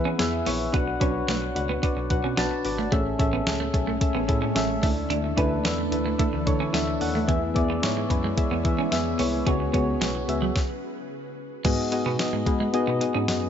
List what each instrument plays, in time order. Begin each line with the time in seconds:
Already playing: tine electric piano E3, synth keys E3 B3 E4 G#4 B4 E5 F#5
0.05 clean electric guitar C#4
0.18 tine electric piano E2, synth keys B3 E4 G#4 E5, snare, closed hi-hat
0.46 tine electric piano A#1, synth keys B3 E4 G#4 C#5, clean electric guitar B3, open hi-hat
0.73 tine electric piano B1, synth keys B2 D4 F#4 B4 F#5, clean electric guitar B3, kick, closed hi-hat
0.88 muted clean electric guitar stroke
1.00 tine electric piano B1, clean electric guitar C#4, synth keys D4 F#4 B4 C#5, kick, closed hi-hat
1.28 tine electric piano B1, clean electric guitar A3, synth keys D4 F#4 B4 F#5, snare, closed hi-hat
1.42 muted clean electric guitar stroke
1.55 tine electric piano C#2, synth keys D4 F#4 B4 F#5, closed hi-hat
1.69 clean electric guitar B3
1.82 clean electric guitar B3, synth keys D4 F#4 B4 D5, kick, closed hi-hat
1.97 tine electric piano B1, muted clean electric guitar stroke
2.10 tine electric piano B1, synth keys D4 F#4 B4 F#5, kick, closed hi-hat
2.24 tine electric piano B2, clean electric guitar C#4
2.37 tine electric piano B1, clean electric guitar B3, synth keys D4 F#4 B4 A5, snare, closed hi-hat
2.51 muted clean electric guitar stroke
2.65 tine electric piano G#1, synth keys D4 F#4 B4 D5, open hi-hat
2.78 clean electric guitar A3
2.92 tine electric piano A1, synth keys A2 C#4 G#4 A4 E5, ambient pad G#3 A3 C#4, clean electric guitar A3, kick, closed hi-hat
3.19 tine electric piano A1, synth keys C#4 G#4 A4 E5, muted clean electric guitar stroke, kick, closed hi-hat
3.33 clean electric guitar B3
3.46 tine electric piano C#2, synth keys C#4 G#4 A4 E5, snare, closed hi-hat
3.60 clean electric guitar A3
3.73 tine electric piano B1, synth keys C#4 G#4 A4 E5, muted clean electric guitar stroke, kick, closed hi-hat
3.87 clean electric guitar A3
4.01 synth keys C#4 G#4 A4 E5, kick, closed hi-hat
4.15 tine electric piano A1, clean electric guitar B3
4.28 tine electric piano A2, synth keys C#4 G#4 A4 E5, muted clean electric guitar stroke, kick, closed hi-hat
4.42 clean electric guitar C#4
4.55 tine electric piano A1, synth keys C#4 G#4 A4 E5, snare, closed hi-hat
4.82 tine electric piano D2, synth keys D3 D4 E4 A4 E5, ambient pad E3 D4, clean electric guitar A3, kick, open hi-hat
5.10 tine electric piano D2, clean electric guitar D4, closed hi-hat
5.24 muted clean electric guitar stroke
5.37 tine electric piano D2, clean electric guitar C#4, synth keys D4 E4 A4 B4, kick, closed hi-hat
5.64 tine electric piano E2, clean electric guitar B3, synth keys D4 E4 A4 E5, snare, closed hi-hat, tambourine
5.78 muted clean electric guitar stroke
5.91 tine electric piano D2, synth keys D4 E4 A4 B4, closed hi-hat
6.06 clean electric guitar A3
6.19 clean electric guitar A3, synth keys D4 E4 A4 E5, kick, closed hi-hat
6.33 tine electric piano D2, muted clean electric guitar stroke
6.46 tine electric piano D3, synth keys D4 E4 A4 C#5, kick, closed hi-hat
6.60 clean electric guitar C#4
6.73 tine electric piano D2, clean electric guitar B3, synth keys D4 E4 A4 E5, snare, closed hi-hat, tambourine
6.88 muted clean electric guitar stroke
7.00 tine electric piano D#2, synth keys D4 E4 A4 F#5, open hi-hat
7.15 clean electric guitar A3
7.28 tine electric piano E2, synth keys E3 B3 E4 G#4 E5, clean electric guitar E3, ambient pad G#3 B3 E4, kick, closed hi-hat
7.55 tine electric piano E2, synth keys B3 E4 G#4 D5, muted clean electric guitar stroke, kick, closed hi-hat
7.70 clean electric guitar B3
7.82 tine electric piano G#2, synth keys B3 E4 G#4 C#5, snare, closed hi-hat, tambourine
7.97 clean electric guitar G#3
8.09 tine electric piano F#2, synth keys B3 E4 G#4 B4, muted clean electric guitar stroke, kick, closed hi-hat
8.24 clean electric guitar G#3
8.37 synth keys B3 E4 G#4 E5, kick, closed hi-hat
8.51 tine electric piano E2, clean electric guitar B3
8.64 tine electric piano E3, synth keys B3 E4 G#4 E5, muted clean electric guitar stroke, kick, closed hi-hat
8.79 clean electric guitar C#4
8.91 tine electric piano E2, synth keys B3 E4 G#4 E5, snare, closed hi-hat, tambourine
9.19 tine electric piano C2, synth keys B3 E4 G#4 C#5, clean electric guitar B3, open hi-hat
9.46 tine electric piano C#2, synth keys C#3 B3 F#4 G#4 C#5, ambient pad C#3 C#4 F#4 G#4 B4, clean electric guitar C#4, kick, closed hi-hat
9.60 muted clean electric guitar stroke
9.73 tine electric piano C#2, synth keys B3 F#4 G#4 C#5, clean electric guitar B3, kick, closed hi-hat
10.01 tine electric piano B1, clean electric guitar G#3, synth keys B3 F#4 G#4 C#5, snare, closed hi-hat, tambourine
10.15 muted clean electric guitar stroke
10.28 tine electric piano C#2, synth keys B3 F#4 G#4 E5, closed hi-hat
10.42 clean electric guitar F#3
10.56 kick, snare
11.64 tine electric piano G#2, synth keys G#2 B3 D#4 F#4 G#4 D#5, clean electric guitar G#3, kick, closed hi-hat, crash
11.92 synth keys B3 D#4 F#4 G#4 D#5, muted clean electric guitar stroke, closed hi-hat
12.06 tine electric piano B2, clean electric guitar B3
12.19 synth keys B3 D#4 F#4 G#4 D#5, snare, closed hi-hat, tambourine
12.33 tine electric piano G#2, clean electric guitar G#3
12.46 tine electric piano G#3, synth keys B3 D#4 F#4 G#4 B4, muted clean electric guitar stroke, kick, closed hi-hat
12.60 clean electric guitar G#3
12.73 synth keys B3 D#4 F#4 G#4 D#5, closed hi-hat
12.87 tine electric piano B2, clean electric guitar B3
13.01 synth keys B3 D#4 F#4 G#4 D#5, muted clean electric guitar stroke, closed hi-hat
13.15 tine electric piano G#2, clean electric guitar C#4
13.28 tine electric piano F#2, synth keys B3 D#4 F#4 G#4 D#5, snare, closed hi-hat, tambourine